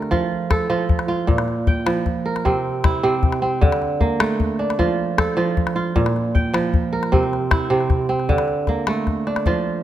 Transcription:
0.00 0.16 D3 medium
0.00 1.33 A3 medium
0.00 0.16 C4 medium
0.00 0.11 F4 medium
0.00 0.55 G4 medium
0.00 0.56 A#4 medium
0.00 calabash click soft
0.11 0.68 F3 medium
0.11 0.69 F4 medium
0.11 calabash thump medium
0.50 1.33 A4 medium
0.50 calabash thump medium
0.50 calabash click medium
0.70 1.33 F3 medium
0.70 1.08 F4 medium
0.89 calabash thump medium
0.99 calabash click soft
1.08 2.60 F4 medium
1.27 2.50 A#2 medium
1.27 calabash thump medium
1.27 calabash click soft
1.38 calabash click soft
1.48 calabash click soft
1.67 2.61 G5 medium
1.67 calabash thump medium
1.86 2.50 F3 medium
1.86 calabash click medium
2.06 calabash thump medium
2.26 3.53 A#4 medium
2.36 calabash click soft
2.45 3.02 C3 medium
2.45 3.03 C4 medium
2.45 calabash thump medium
2.84 4.41 E4 medium
2.84 calabash thump medium
2.84 calabash click medium
3.03 3.67 C3 medium
3.03 3.42 C4 medium
3.23 calabash thump medium
3.32 calabash click soft
3.42 5.22 C4 medium
3.61 4.84 D3 medium
3.61 calabash thump medium
3.61 calabash click soft
3.72 calabash click soft
3.82 calabash click soft
4.01 5.24 A#3 medium
4.01 calabash thump medium
4.20 6.02 A3 medium
4.20 calabash click medium
4.40 calabash thump medium
4.59 6.27 D4 medium
4.70 calabash click medium
4.79 5.36 F3 medium
4.79 5.37 F4 medium
4.79 calabash thump medium
5.18 6.02 A4 medium
5.18 calabash thump medium
5.18 calabash click medium
5.37 6.01 F3 medium
5.37 5.75 F4 medium
5.57 calabash thump medium
5.67 calabash click soft
5.76 7.27 F4 medium
5.96 7.18 A#2 medium
5.96 calabash thump medium
5.96 calabash click soft
6.06 calabash click medium
6.16 calabash click soft
6.35 7.28 G5 medium
6.35 calabash thump medium
6.54 7.18 F3 medium
6.54 calabash click medium
6.74 calabash thump medium
6.93 8.20 A#4 medium
7.03 calabash click soft
7.12 7.69 C3 medium
7.12 7.70 C4 medium
7.12 calabash thump medium
7.23 calabash click soft
7.33 calabash click soft
7.51 9.08 E4 medium
7.51 calabash thump medium
7.51 calabash click medium
7.70 8.34 C3 medium
7.70 8.09 C4 medium
7.80 calabash click soft
7.90 calabash thump medium
7.90 calabash click soft
8.09 9.83 C4 medium
8.20 calabash click soft
8.29 9.51 D3 medium
8.29 calabash thump medium
8.38 calabash click soft
8.48 calabash click soft
8.67 9.83 A#3 medium
8.67 calabash thump medium
8.67 calabash click soft
8.87 9.83 A3 medium
8.87 calabash click medium
9.07 calabash thump medium
9.07 calabash click soft
9.27 9.83 D4 medium
9.27 calabash click soft
9.36 calabash click soft
9.46 9.83 F3 medium
9.46 9.83 F4 medium
9.46 calabash thump medium

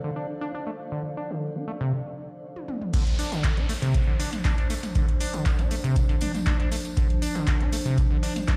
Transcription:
0.00 2.89 F3 medium
0.00 1.93 D4 medium
0.00 2.89 D4 medium
0.00 1.93 A4 medium
0.00 2.89 C5 medium
0.00 1.93 D5 medium
0.00 1.93 F5 medium
0.04 0.11 D3 medium
0.16 0.27 D4 medium
0.41 0.52 D4 loud
0.55 0.65 D4 medium
0.67 0.71 A3 medium
0.92 1.03 D3 medium
1.17 1.32 D4 medium
1.30 1.57 D3 medium
1.55 1.65 D4 medium
1.68 1.72 A3 medium
1.81 1.93 C3 loud
2.56 high tom soft
2.68 mid tom medium
2.81 mid tom medium
2.93 3.04 D3 medium
2.93 8.57 F3 medium
2.93 8.57 D4 medium
2.93 8.57 C5 loud
2.93 kick loud
2.93 closed hi-hat medium
2.93 tambourine soft
2.93 crash loud
2.93 downlifter medium
2.93 shaker medium
3.07 closed hi-hat soft
3.19 3.33 D4 medium
3.19 open hi-hat loud
3.19 tambourine medium
3.19 shaker medium
3.32 3.59 D3 medium
3.32 snare soft
3.32 closed hi-hat medium
3.32 tambourine medium
3.44 kick loud
3.44 snare loud
3.44 clap loud
3.44 closed hi-hat medium
3.44 tambourine soft
3.44 shaker medium
3.57 3.67 D4 medium
3.57 snare soft
3.57 closed hi-hat soft
3.69 3.74 A3 medium
3.69 open hi-hat medium
3.69 tambourine medium
3.69 shaker medium
3.82 3.96 C3 loud
3.82 closed hi-hat medium
3.82 tambourine soft
3.94 3.99 D3 medium
3.94 kick loud
3.94 closed hi-hat medium
3.94 tambourine soft
3.94 shaker medium
4.07 4.14 D3 medium
4.20 4.30 D4 medium
4.20 snare medium
4.20 open hi-hat loud
4.20 tambourine medium
4.20 shaker medium
4.33 closed hi-hat soft
4.33 closed hi-hat medium
4.33 mid tom medium
4.33 tambourine medium
4.45 4.56 D4 loud
4.45 kick loud
4.45 snare loud
4.45 clap loud
4.45 closed hi-hat medium
4.45 tambourine soft
4.45 shaker medium
4.58 4.68 D4 medium
4.58 closed hi-hat soft
4.70 4.74 A3 medium
4.70 open hi-hat medium
4.70 tambourine loud
4.70 shaker medium
4.83 closed hi-hat soft
4.83 closed hi-hat medium
4.83 mid tom medium
4.83 tambourine soft
4.95 5.06 D3 medium
4.95 kick loud
4.95 closed hi-hat medium
4.95 tambourine soft
4.95 shaker medium
5.08 closed hi-hat soft
5.20 5.35 D4 medium
5.20 open hi-hat loud
5.20 tambourine loud
5.20 shaker medium
5.33 5.60 D3 medium
5.33 closed hi-hat medium
5.33 tambourine medium
5.46 kick loud
5.46 snare loud
5.46 clap loud
5.46 closed hi-hat medium
5.46 shaker medium
5.59 5.69 D4 medium
5.59 closed hi-hat soft
5.71 5.75 A3 medium
5.71 open hi-hat loud
5.71 tambourine loud
5.71 shaker medium
5.84 5.98 C3 loud
5.84 closed hi-hat medium
5.84 tambourine medium
5.96 6.00 D3 medium
5.96 kick loud
5.96 closed hi-hat medium
5.96 tambourine soft
5.96 shaker medium
6.09 6.16 D3 medium
6.09 closed hi-hat soft
6.21 6.32 D4 medium
6.21 mid tom medium
6.21 open hi-hat loud
6.21 tambourine loud
6.21 shaker medium
6.34 snare soft
6.34 closed hi-hat medium
6.34 mid tom medium
6.34 tambourine medium
6.46 6.57 D4 loud
6.46 kick loud
6.46 snare loud
6.46 clap loud
6.46 closed hi-hat medium
6.46 tambourine soft
6.46 shaker medium
6.60 6.70 D4 medium
6.60 snare soft
6.60 closed hi-hat soft
6.72 6.76 A3 medium
6.72 open hi-hat loud
6.72 tambourine medium
6.72 shaker medium
6.85 closed hi-hat medium
6.85 tambourine medium
6.97 7.08 D3 medium
6.97 kick loud
6.97 closed hi-hat medium
6.97 tambourine soft
6.97 shaker medium
7.10 closed hi-hat soft
7.22 7.37 D4 medium
7.22 open hi-hat loud
7.22 tambourine medium
7.22 shaker medium
7.35 7.62 D3 medium
7.35 snare soft
7.35 closed hi-hat medium
7.35 tambourine medium
7.47 kick loud
7.47 snare loud
7.47 clap loud
7.47 closed hi-hat medium
7.47 shaker medium
7.60 7.70 D4 medium
7.60 snare soft
7.60 closed hi-hat soft
7.72 7.77 A3 medium
7.72 open hi-hat loud
7.72 tambourine loud
7.72 shaker medium
7.85 7.99 C3 loud
7.85 closed hi-hat medium
7.85 tambourine medium
7.98 8.02 D3 medium
7.98 kick loud
7.98 closed hi-hat medium
7.98 tambourine soft
7.98 shaker medium
8.11 8.17 D3 medium
8.23 8.34 D4 medium
8.23 snare medium
8.23 open hi-hat loud
8.23 tambourine loud
8.23 shaker medium
8.36 closed hi-hat soft
8.36 closed hi-hat medium
8.36 mid tom medium
8.36 tambourine medium
8.48 8.57 D4 loud
8.48 kick loud
8.48 snare loud
8.48 clap loud
8.48 closed hi-hat medium
8.48 tambourine soft
8.48 shaker medium

